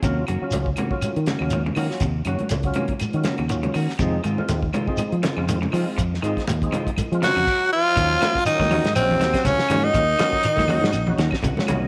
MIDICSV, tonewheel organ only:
0, 0, Header, 1, 2, 480
1, 0, Start_track
1, 0, Tempo, 495458
1, 35, Time_signature, 4, 2, 24, 8
1, 11506, End_track
2, 0, Start_track
2, 0, Title_t, "Tonewheel organ"
2, 0, Program_c, 0, 16
2, 24, Note_on_c, 0, 54, 85
2, 40, Note_on_c, 0, 61, 73
2, 50, Note_on_c, 0, 65, 103
2, 239, Note_off_c, 0, 54, 0
2, 246, Note_off_c, 0, 61, 0
2, 252, Note_off_c, 0, 65, 0
2, 404, Note_on_c, 0, 54, 83
2, 416, Note_on_c, 0, 61, 76
2, 425, Note_on_c, 0, 65, 97
2, 677, Note_off_c, 0, 54, 0
2, 682, Note_off_c, 0, 61, 0
2, 687, Note_off_c, 0, 65, 0
2, 876, Note_on_c, 0, 54, 93
2, 887, Note_on_c, 0, 61, 77
2, 897, Note_on_c, 0, 65, 86
2, 1152, Note_off_c, 0, 54, 0
2, 1158, Note_off_c, 0, 61, 0
2, 1163, Note_off_c, 0, 65, 0
2, 1370, Note_on_c, 0, 54, 68
2, 1378, Note_on_c, 0, 61, 72
2, 1384, Note_on_c, 0, 65, 93
2, 1571, Note_off_c, 0, 54, 0
2, 1575, Note_off_c, 0, 61, 0
2, 1578, Note_off_c, 0, 65, 0
2, 1714, Note_on_c, 0, 54, 72
2, 1726, Note_on_c, 0, 61, 67
2, 1734, Note_on_c, 0, 65, 83
2, 1993, Note_off_c, 0, 54, 0
2, 1999, Note_off_c, 0, 61, 0
2, 2003, Note_off_c, 0, 65, 0
2, 2197, Note_on_c, 0, 54, 81
2, 2208, Note_on_c, 0, 61, 72
2, 2216, Note_on_c, 0, 66, 82
2, 2406, Note_off_c, 0, 54, 0
2, 2412, Note_off_c, 0, 61, 0
2, 2416, Note_off_c, 0, 66, 0
2, 2569, Note_on_c, 0, 54, 80
2, 2578, Note_on_c, 0, 61, 71
2, 2586, Note_on_c, 0, 65, 93
2, 2840, Note_off_c, 0, 54, 0
2, 2844, Note_off_c, 0, 61, 0
2, 2849, Note_off_c, 0, 65, 0
2, 3050, Note_on_c, 0, 54, 81
2, 3061, Note_on_c, 0, 61, 74
2, 3072, Note_on_c, 0, 65, 82
2, 3252, Note_off_c, 0, 54, 0
2, 3258, Note_off_c, 0, 61, 0
2, 3263, Note_off_c, 0, 65, 0
2, 3389, Note_on_c, 0, 54, 78
2, 3402, Note_on_c, 0, 61, 69
2, 3409, Note_on_c, 0, 65, 90
2, 3671, Note_off_c, 0, 54, 0
2, 3678, Note_off_c, 0, 61, 0
2, 3681, Note_off_c, 0, 65, 0
2, 3871, Note_on_c, 0, 56, 90
2, 3879, Note_on_c, 0, 60, 89
2, 3897, Note_on_c, 0, 63, 104
2, 4084, Note_off_c, 0, 56, 0
2, 4088, Note_off_c, 0, 60, 0
2, 4097, Note_off_c, 0, 63, 0
2, 4241, Note_on_c, 0, 56, 89
2, 4245, Note_on_c, 0, 60, 75
2, 4256, Note_on_c, 0, 65, 98
2, 4517, Note_off_c, 0, 56, 0
2, 4519, Note_off_c, 0, 60, 0
2, 4524, Note_off_c, 0, 65, 0
2, 4717, Note_on_c, 0, 56, 90
2, 4730, Note_on_c, 0, 60, 83
2, 4732, Note_on_c, 0, 63, 96
2, 4995, Note_off_c, 0, 56, 0
2, 5002, Note_off_c, 0, 60, 0
2, 5003, Note_off_c, 0, 63, 0
2, 5198, Note_on_c, 0, 56, 77
2, 5216, Note_on_c, 0, 60, 73
2, 5222, Note_on_c, 0, 65, 93
2, 5407, Note_off_c, 0, 56, 0
2, 5416, Note_off_c, 0, 60, 0
2, 5419, Note_off_c, 0, 65, 0
2, 5546, Note_on_c, 0, 56, 79
2, 5558, Note_on_c, 0, 60, 72
2, 5565, Note_on_c, 0, 65, 84
2, 5831, Note_off_c, 0, 56, 0
2, 5837, Note_off_c, 0, 60, 0
2, 5840, Note_off_c, 0, 65, 0
2, 6025, Note_on_c, 0, 56, 84
2, 6040, Note_on_c, 0, 60, 73
2, 6051, Note_on_c, 0, 63, 90
2, 6242, Note_off_c, 0, 56, 0
2, 6249, Note_off_c, 0, 60, 0
2, 6255, Note_off_c, 0, 63, 0
2, 6416, Note_on_c, 0, 56, 76
2, 6426, Note_on_c, 0, 60, 76
2, 6432, Note_on_c, 0, 63, 89
2, 6685, Note_off_c, 0, 56, 0
2, 6690, Note_off_c, 0, 60, 0
2, 6693, Note_off_c, 0, 63, 0
2, 6900, Note_on_c, 0, 56, 75
2, 6906, Note_on_c, 0, 60, 71
2, 6924, Note_on_c, 0, 65, 94
2, 7099, Note_off_c, 0, 56, 0
2, 7102, Note_off_c, 0, 60, 0
2, 7111, Note_off_c, 0, 65, 0
2, 7715, Note_on_c, 0, 54, 79
2, 7729, Note_on_c, 0, 61, 74
2, 7736, Note_on_c, 0, 65, 88
2, 7995, Note_off_c, 0, 54, 0
2, 8002, Note_off_c, 0, 61, 0
2, 8006, Note_off_c, 0, 65, 0
2, 8187, Note_on_c, 0, 54, 78
2, 8196, Note_on_c, 0, 61, 69
2, 8208, Note_on_c, 0, 65, 83
2, 8471, Note_off_c, 0, 54, 0
2, 8475, Note_off_c, 0, 61, 0
2, 8481, Note_off_c, 0, 65, 0
2, 8685, Note_on_c, 0, 54, 76
2, 8697, Note_on_c, 0, 61, 70
2, 8697, Note_on_c, 0, 65, 88
2, 8892, Note_off_c, 0, 54, 0
2, 8898, Note_off_c, 0, 61, 0
2, 8898, Note_off_c, 0, 65, 0
2, 9045, Note_on_c, 0, 54, 70
2, 9055, Note_on_c, 0, 61, 64
2, 9066, Note_on_c, 0, 66, 85
2, 9319, Note_off_c, 0, 54, 0
2, 9324, Note_off_c, 0, 61, 0
2, 9330, Note_off_c, 0, 66, 0
2, 9526, Note_on_c, 0, 54, 85
2, 9527, Note_on_c, 0, 61, 82
2, 9542, Note_on_c, 0, 65, 87
2, 9731, Note_off_c, 0, 54, 0
2, 9732, Note_off_c, 0, 61, 0
2, 9739, Note_off_c, 0, 65, 0
2, 9862, Note_on_c, 0, 54, 85
2, 9872, Note_on_c, 0, 61, 82
2, 9879, Note_on_c, 0, 65, 88
2, 10148, Note_off_c, 0, 54, 0
2, 10153, Note_off_c, 0, 61, 0
2, 10156, Note_off_c, 0, 65, 0
2, 10351, Note_on_c, 0, 54, 99
2, 10361, Note_on_c, 0, 61, 83
2, 10368, Note_on_c, 0, 66, 104
2, 10564, Note_off_c, 0, 54, 0
2, 10569, Note_off_c, 0, 61, 0
2, 10573, Note_off_c, 0, 66, 0
2, 10736, Note_on_c, 0, 54, 86
2, 10750, Note_on_c, 0, 61, 81
2, 10752, Note_on_c, 0, 66, 91
2, 10856, Note_on_c, 0, 82, 77
2, 11004, Note_off_c, 0, 54, 0
2, 11011, Note_off_c, 0, 61, 0
2, 11012, Note_off_c, 0, 66, 0
2, 11071, Note_off_c, 0, 82, 0
2, 11101, Note_on_c, 0, 78, 64
2, 11242, Note_on_c, 0, 54, 82
2, 11248, Note_on_c, 0, 61, 80
2, 11259, Note_on_c, 0, 65, 103
2, 11314, Note_off_c, 0, 78, 0
2, 11355, Note_on_c, 0, 75, 66
2, 11428, Note_off_c, 0, 54, 0
2, 11431, Note_off_c, 0, 61, 0
2, 11437, Note_off_c, 0, 65, 0
2, 11506, Note_off_c, 0, 75, 0
2, 11506, End_track
0, 0, End_of_file